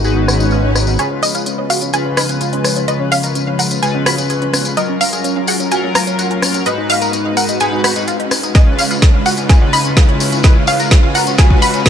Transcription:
Already playing: G#1 D#3 G#3 B3 F#4 F#5
0.04 G#2 G#3 D#4 F#4 G#4 B4, tambourine, swell
0.17 D#4
0.28 F#4, cross-stick, tambourine
0.40 D#4, tambourine
0.51 F4, tambourine
0.64 D#4
0.75 D#4, cross-stick, tambourine
0.87 D#4, tambourine
0.99 C#3 F3 G#3 B3 C#4 F4 G#4 B4 C#5, closed hi-hat, tambourine, riser
1.11 C#4
1.23 C#4 D#5, open hi-hat, tambourine
1.35 F4, closed hi-hat, tambourine
1.46 C#4, closed hi-hat, tambourine
1.58 C#4
1.70 F#4 F5, open hi-hat, tambourine
1.81 C#4, closed hi-hat, tambourine
1.93 C#3 G#3 C#4 F4 B4 G#5, closed hi-hat, tambourine
2.06 C#4
2.17 D#4 B5, cross-stick, open hi-hat, tambourine
2.29 C#4, closed hi-hat, tambourine
2.41 F4, closed hi-hat, tambourine
2.53 C#4, closed hi-hat
2.64 C#4, cross-stick, open hi-hat, tambourine
2.76 C#4, closed hi-hat, tambourine
2.88 C#3 G#3 C#4 F4 B4 D#5, closed hi-hat, tambourine
3.00 C#4
3.12 C#4 F5, open hi-hat, tambourine
3.23 A#4, closed hi-hat, tambourine
3.35 C#4, closed hi-hat, tambourine
3.47 C#4
3.59 A#4 F#5, open hi-hat, tambourine
3.71 C#4, closed hi-hat, tambourine
3.83 C#3 G#3 C#4 F4 G#4 B4 G#5, closed hi-hat, tambourine
3.95 C#4
4.06 F#4 B5, cross-stick, open hi-hat, tambourine
4.18 C#4, closed hi-hat, tambourine
4.30 G#4, closed hi-hat, tambourine
4.42 C#4, closed hi-hat
4.53 C#4, cross-stick, open hi-hat, tambourine
4.65 C#4, closed hi-hat, tambourine
4.77 F#3 C#4 F4 A#4 D#5, closed hi-hat, tambourine
4.89 C#4
5.01 C#4 F5, open hi-hat, tambourine
5.13 G#4, closed hi-hat, tambourine
5.24 C#4, closed hi-hat, tambourine
5.36 C#4
5.47 G#4 F#5, open hi-hat, tambourine
5.60 C#4, closed hi-hat, tambourine
5.71 F#3 C#4 F4 F#4 A#4 G#5, closed hi-hat, tambourine
5.84 C#4
5.95 F4 A#5, cross-stick, open hi-hat, tambourine
6.07 C#4, closed hi-hat, tambourine
6.19 F#4, closed hi-hat, tambourine
6.31 C#4, closed hi-hat
6.42 C#4, cross-stick, open hi-hat, tambourine
6.54 C#4, closed hi-hat, tambourine
6.66 G#2 G#3 D#4 F#4 B4 D#5, closed hi-hat, tambourine
6.78 D#4
6.90 D#4 F5, open hi-hat, tambourine
7.02 A#4, closed hi-hat, tambourine
7.13 D#4, closed hi-hat, tambourine
7.25 D#4
7.37 A#4 F#5, open hi-hat, tambourine
7.49 D#4, closed hi-hat, tambourine
7.60 G#2 G#3 D#4 F#4 G#4 B4 G#5, closed hi-hat, tambourine
7.72 D#4
7.84 G#2 G#3 D#4 F#4 B4 B5, cross-stick, open hi-hat, tambourine
7.96 G#2 G#3 D#4 F#4 B4, closed hi-hat, tambourine
8.08 F4, closed hi-hat, tambourine
8.20 D#4, closed hi-hat
8.31 D#4, cross-stick, open hi-hat, tambourine
8.43 D#4, closed hi-hat, tambourine
8.55 C#3 G#3 C#4 F4 G#4 B4 D#5, kick, snare, closed hi-hat, tambourine
8.67 C#4
8.79 C#4 F5, open hi-hat, tambourine
8.91 F4, closed hi-hat, tambourine
9.02 C#4, kick, snare, closed hi-hat, tambourine
9.14 C#4
9.26 F#4 F#5, open hi-hat, tambourine
9.37 C#4, closed hi-hat, tambourine
9.49 C#3 G#3 C#4 F4 B4 G#5, kick, snare, closed hi-hat, tambourine
9.61 C#4
9.73 D#4 B5, open hi-hat, tambourine
9.84 C#4, closed hi-hat, tambourine
9.97 F4, kick, snare, closed hi-hat, tambourine
10.09 C#4, closed hi-hat
10.20 C#4, open hi-hat, tambourine
10.32 C#4, closed hi-hat, tambourine
10.43 G#3 C#4 F4 B4 D#5, kick, snare, closed hi-hat, tambourine
10.56 C#4
10.67 C#4 F5, open hi-hat, tambourine
10.80 A#4, closed hi-hat, tambourine
10.91 C#4, kick, snare, closed hi-hat
11.03 C#4
11.15 A#4 F#5, open hi-hat, tambourine
11.27 C#4, closed hi-hat, tambourine
11.38 C#3 G#3 C#4 F4 G#4 B4 G#5, kick, snare, closed hi-hat, tambourine
11.50 C#4, kick
11.62 F#4 B5, open hi-hat, tambourine
11.74 C#4, closed hi-hat, tambourine
11.86 G#4, kick, snare, closed hi-hat, tambourine

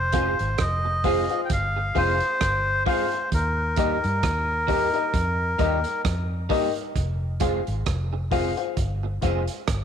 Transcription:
Already playing: F1 C5
0.12 G#3 C4 F4 G#4 C5 F5, kick, closed hi-hat
0.39 G#1, closed hi-hat
0.58 F1 D#5, kick, cross-stick, closed hi-hat
0.85 muted clean electric guitar stroke
1.04 G#3 C4 F4 G#4 C5 F5, kick, open hi-hat
1.29 F4 G#4 C5 F5, closed hi-hat
1.45 G5
1.50 G1 F5, kick, closed hi-hat
1.76 muted clean electric guitar stroke
1.95 F1 G#3 C4 F4 G#4 C5 F5, kick, open hi-hat
2.20 closed hi-hat
2.41 G1, kick, cross-stick, closed hi-hat
2.86 G#3 C4 F4 G#4 C5 F5, kick, open hi-hat
3.12 muted clean electric guitar stroke, closed hi-hat
3.32 D#2 A#4, kick, closed hi-hat
3.76 G3 A#3 D#4 G4 A#4 D#5, kick, closed hi-hat
4.04 G2, closed hi-hat
4.23 D#2, kick, cross-stick, closed hi-hat
4.67 G3 A#3 D#4 G4 A#4 D#5, kick, open hi-hat
4.93 D#4 G4 A#4 D#5, closed hi-hat
5.14 F2, kick, closed hi-hat
5.58 D#2 G3 A#3 D#4 G4 A#4 D#5, kick, closed hi-hat
5.84 closed hi-hat
6.05 F2, kick, cross-stick, closed hi-hat
6.49 G3 A#3 D#4 G4 A#4 D#5, kick, open hi-hat
6.75 closed hi-hat
6.96 F1, kick, closed hi-hat
7.40 G#3 C4 F4 G#4 C5 F5, kick, closed hi-hat
7.67 G#1, closed hi-hat
7.86 F1, kick, cross-stick, closed hi-hat
8.13 muted clean electric guitar stroke
8.31 G#3 C4 F4 G#4 C5 F5, kick, open hi-hat
8.56 F4 G#4 C5 F5, closed hi-hat
8.77 G1, kick, closed hi-hat
9.03 muted clean electric guitar stroke
9.21 F1 G#3 C4 F4 G#4 C5 F5, kick, closed hi-hat
9.47 closed hi-hat
9.68 G1, kick, cross-stick, closed hi-hat

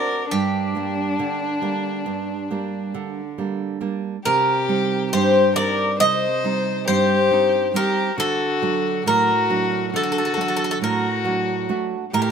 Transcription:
Already playing: C4 D4 F#4 A#4 D5
0.30 G2 D4 G4
0.75 G3 A#3 D4
1.19 D3
1.62 G3 A#3 D4
2.06 G2
2.51 G3 A#3 D4
2.94 D3
3.38 G3 A#3 D4
3.81 G3 A#3 D4
4.25 C3 G4 A#4
4.69 G3 C4 D#4
5.12 G2 G4 C5
5.56 G3 C4 D#4 A#4 D5
6.00 C3 C5 D#5
6.44 G3 C4 D#4
6.88 G2 G4 C5
7.31 G3 C4 D#4
7.74 G3 C4 D#4 G4 A#4
8.18 D3 F#4 A4
8.62 F#3 D4 F#4
9.06 A2 F#4 A#4
9.50 F#3 D4 F#4
9.94 D3 F#4 A4
10.03 A4
10.12 A4
10.18 A4
10.25 A4
10.34 F#3 D4 F#4 A4
10.41 A4
10.48 A4
10.57 A4
10.64 A4
10.71 A4
10.81 A2 F#4 A#4
11.24 F#3 D4 F#4
11.69 A3 D4 F#4
12.13 A2 G4 A#4
12.22 A#4

